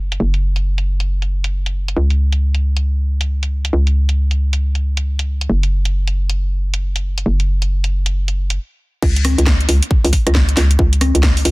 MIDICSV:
0, 0, Header, 1, 3, 480
1, 0, Start_track
1, 0, Tempo, 441176
1, 219, Time_signature, 4, 2, 24, 8
1, 12523, End_track
2, 0, Start_track
2, 0, Title_t, "FM bass"
2, 0, Program_c, 0, 39
2, 0, Note_on_c, 0, 30, 89
2, 201, Note_off_c, 0, 30, 0
2, 218, Note_on_c, 0, 30, 89
2, 2121, Note_off_c, 0, 30, 0
2, 2138, Note_on_c, 0, 37, 90
2, 4041, Note_off_c, 0, 37, 0
2, 4059, Note_on_c, 0, 37, 86
2, 5961, Note_off_c, 0, 37, 0
2, 5979, Note_on_c, 0, 30, 86
2, 7881, Note_off_c, 0, 30, 0
2, 7899, Note_on_c, 0, 30, 89
2, 9339, Note_off_c, 0, 30, 0
2, 9819, Note_on_c, 0, 37, 100
2, 10180, Note_off_c, 0, 37, 0
2, 10208, Note_on_c, 0, 37, 81
2, 10521, Note_off_c, 0, 37, 0
2, 10539, Note_on_c, 0, 37, 85
2, 10671, Note_off_c, 0, 37, 0
2, 10928, Note_on_c, 0, 37, 100
2, 11007, Note_off_c, 0, 37, 0
2, 11170, Note_on_c, 0, 37, 105
2, 11481, Note_off_c, 0, 37, 0
2, 11500, Note_on_c, 0, 37, 95
2, 11717, Note_off_c, 0, 37, 0
2, 11738, Note_on_c, 0, 37, 100
2, 12099, Note_off_c, 0, 37, 0
2, 12128, Note_on_c, 0, 37, 80
2, 12441, Note_off_c, 0, 37, 0
2, 12459, Note_on_c, 0, 37, 82
2, 12523, Note_off_c, 0, 37, 0
2, 12523, End_track
3, 0, Start_track
3, 0, Title_t, "Drums"
3, 129, Note_on_c, 9, 42, 61
3, 238, Note_off_c, 9, 42, 0
3, 369, Note_on_c, 9, 42, 46
3, 478, Note_off_c, 9, 42, 0
3, 609, Note_on_c, 9, 42, 58
3, 718, Note_off_c, 9, 42, 0
3, 849, Note_on_c, 9, 42, 34
3, 958, Note_off_c, 9, 42, 0
3, 1089, Note_on_c, 9, 42, 62
3, 1198, Note_off_c, 9, 42, 0
3, 1329, Note_on_c, 9, 42, 33
3, 1438, Note_off_c, 9, 42, 0
3, 1569, Note_on_c, 9, 42, 61
3, 1678, Note_off_c, 9, 42, 0
3, 1809, Note_on_c, 9, 42, 50
3, 1917, Note_off_c, 9, 42, 0
3, 2049, Note_on_c, 9, 42, 61
3, 2158, Note_off_c, 9, 42, 0
3, 2289, Note_on_c, 9, 42, 49
3, 2398, Note_off_c, 9, 42, 0
3, 2529, Note_on_c, 9, 42, 62
3, 2638, Note_off_c, 9, 42, 0
3, 2770, Note_on_c, 9, 42, 35
3, 2878, Note_off_c, 9, 42, 0
3, 3009, Note_on_c, 9, 42, 66
3, 3118, Note_off_c, 9, 42, 0
3, 3489, Note_on_c, 9, 42, 64
3, 3598, Note_off_c, 9, 42, 0
3, 3730, Note_on_c, 9, 42, 50
3, 3838, Note_off_c, 9, 42, 0
3, 3969, Note_on_c, 9, 42, 65
3, 4078, Note_off_c, 9, 42, 0
3, 4210, Note_on_c, 9, 42, 50
3, 4319, Note_off_c, 9, 42, 0
3, 4449, Note_on_c, 9, 42, 64
3, 4558, Note_off_c, 9, 42, 0
3, 4690, Note_on_c, 9, 42, 37
3, 4799, Note_off_c, 9, 42, 0
3, 4929, Note_on_c, 9, 42, 67
3, 5038, Note_off_c, 9, 42, 0
3, 5170, Note_on_c, 9, 42, 36
3, 5278, Note_off_c, 9, 42, 0
3, 5409, Note_on_c, 9, 42, 70
3, 5518, Note_off_c, 9, 42, 0
3, 5649, Note_on_c, 9, 42, 55
3, 5758, Note_off_c, 9, 42, 0
3, 5889, Note_on_c, 9, 42, 67
3, 5998, Note_off_c, 9, 42, 0
3, 6129, Note_on_c, 9, 42, 50
3, 6238, Note_off_c, 9, 42, 0
3, 6369, Note_on_c, 9, 42, 68
3, 6478, Note_off_c, 9, 42, 0
3, 6610, Note_on_c, 9, 42, 37
3, 6719, Note_off_c, 9, 42, 0
3, 6850, Note_on_c, 9, 42, 70
3, 6958, Note_off_c, 9, 42, 0
3, 7329, Note_on_c, 9, 42, 71
3, 7438, Note_off_c, 9, 42, 0
3, 7569, Note_on_c, 9, 42, 53
3, 7678, Note_off_c, 9, 42, 0
3, 7808, Note_on_c, 9, 42, 67
3, 7917, Note_off_c, 9, 42, 0
3, 8049, Note_on_c, 9, 42, 50
3, 8158, Note_off_c, 9, 42, 0
3, 8290, Note_on_c, 9, 42, 62
3, 8399, Note_off_c, 9, 42, 0
3, 8531, Note_on_c, 9, 42, 38
3, 8639, Note_off_c, 9, 42, 0
3, 8770, Note_on_c, 9, 42, 68
3, 8878, Note_off_c, 9, 42, 0
3, 9010, Note_on_c, 9, 42, 38
3, 9119, Note_off_c, 9, 42, 0
3, 9250, Note_on_c, 9, 42, 67
3, 9359, Note_off_c, 9, 42, 0
3, 9819, Note_on_c, 9, 36, 125
3, 9820, Note_on_c, 9, 49, 108
3, 9928, Note_off_c, 9, 36, 0
3, 9928, Note_off_c, 9, 49, 0
3, 9971, Note_on_c, 9, 42, 51
3, 10060, Note_on_c, 9, 37, 70
3, 10060, Note_on_c, 9, 46, 109
3, 10060, Note_on_c, 9, 63, 74
3, 10079, Note_off_c, 9, 42, 0
3, 10169, Note_off_c, 9, 37, 0
3, 10169, Note_off_c, 9, 46, 0
3, 10169, Note_off_c, 9, 63, 0
3, 10211, Note_on_c, 9, 42, 63
3, 10299, Note_on_c, 9, 36, 122
3, 10299, Note_on_c, 9, 38, 122
3, 10320, Note_off_c, 9, 42, 0
3, 10407, Note_off_c, 9, 36, 0
3, 10408, Note_off_c, 9, 38, 0
3, 10450, Note_on_c, 9, 42, 37
3, 10539, Note_on_c, 9, 46, 108
3, 10559, Note_off_c, 9, 42, 0
3, 10648, Note_off_c, 9, 46, 0
3, 10690, Note_on_c, 9, 42, 70
3, 10779, Note_on_c, 9, 36, 114
3, 10799, Note_off_c, 9, 42, 0
3, 10888, Note_off_c, 9, 36, 0
3, 10930, Note_on_c, 9, 46, 68
3, 11018, Note_on_c, 9, 36, 62
3, 11020, Note_off_c, 9, 46, 0
3, 11020, Note_on_c, 9, 46, 107
3, 11127, Note_off_c, 9, 36, 0
3, 11128, Note_off_c, 9, 46, 0
3, 11170, Note_on_c, 9, 37, 59
3, 11170, Note_on_c, 9, 42, 72
3, 11259, Note_on_c, 9, 36, 118
3, 11259, Note_on_c, 9, 38, 127
3, 11279, Note_off_c, 9, 37, 0
3, 11279, Note_off_c, 9, 42, 0
3, 11367, Note_off_c, 9, 36, 0
3, 11368, Note_off_c, 9, 38, 0
3, 11409, Note_on_c, 9, 42, 55
3, 11499, Note_on_c, 9, 38, 62
3, 11499, Note_on_c, 9, 46, 111
3, 11518, Note_off_c, 9, 42, 0
3, 11608, Note_off_c, 9, 38, 0
3, 11608, Note_off_c, 9, 46, 0
3, 11649, Note_on_c, 9, 42, 66
3, 11739, Note_on_c, 9, 36, 126
3, 11758, Note_off_c, 9, 42, 0
3, 11847, Note_off_c, 9, 36, 0
3, 11889, Note_on_c, 9, 42, 49
3, 11980, Note_on_c, 9, 37, 67
3, 11980, Note_on_c, 9, 46, 108
3, 11980, Note_on_c, 9, 63, 77
3, 11998, Note_off_c, 9, 42, 0
3, 12089, Note_off_c, 9, 37, 0
3, 12089, Note_off_c, 9, 46, 0
3, 12089, Note_off_c, 9, 63, 0
3, 12130, Note_on_c, 9, 42, 63
3, 12218, Note_on_c, 9, 36, 125
3, 12220, Note_on_c, 9, 38, 127
3, 12239, Note_off_c, 9, 42, 0
3, 12327, Note_off_c, 9, 36, 0
3, 12328, Note_off_c, 9, 38, 0
3, 12370, Note_on_c, 9, 46, 64
3, 12460, Note_off_c, 9, 46, 0
3, 12460, Note_on_c, 9, 46, 108
3, 12523, Note_off_c, 9, 46, 0
3, 12523, End_track
0, 0, End_of_file